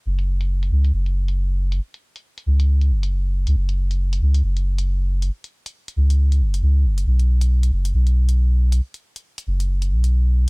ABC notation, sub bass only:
X:1
M:4/4
L:1/16
Q:"Swing 16ths" 1/4=137
K:Bdor
V:1 name="Sub bass" clef=bass
F,,,6 C,,2 F,,,8 | z6 C,,4 F,,,4- F,,, C,, | F,,,6 C,,2 F,,,8 | z6 C,,4 F,,,2 C,,2 F,,,2 |
B,,,6 F,,,2 B,,,8 | z6 F,,,4 B,,,4- B,,, z |]